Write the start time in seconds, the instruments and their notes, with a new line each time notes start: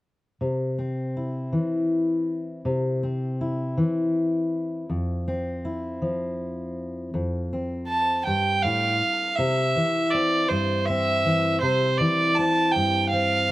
0.41 steel-string acoustic guitar C3
0.78 steel-string acoustic guitar C4
1.17 steel-string acoustic guitar E4
1.52 steel-string acoustic guitar E3
2.65 steel-string acoustic guitar C3
3.03 steel-string acoustic guitar C4
3.41 steel-string acoustic guitar E4
3.77 steel-string acoustic guitar E3
4.90 steel-string acoustic guitar F2
5.28 steel-string acoustic guitar C4
5.65 steel-string acoustic guitar E4
6.02 steel-string acoustic guitar F3
7.14 steel-string acoustic guitar F2
7.53 steel-string acoustic guitar C4
7.87 fiddle A5
8.25 steel-string acoustic guitar G2, fiddle G5
8.62 steel-string acoustic guitar A2, fiddle F5
9.36 steel-string acoustic guitar C3, fiddle E5
9.76 steel-string acoustic guitar E3
10.11 steel-string acoustic guitar C4, fiddle D5
10.48 steel-string acoustic guitar G2, fiddle C5
10.86 steel-string acoustic guitar C4, fiddle E5
11.25 steel-string acoustic guitar E3
11.61 steel-string acoustic guitar C3, fiddle C5
11.97 steel-string acoustic guitar E3, fiddle D5
12.35 steel-string acoustic guitar C4, fiddle A5
12.72 fiddle G5
12.76 steel-string acoustic guitar G2
13.09 steel-string acoustic guitar C4, fiddle F5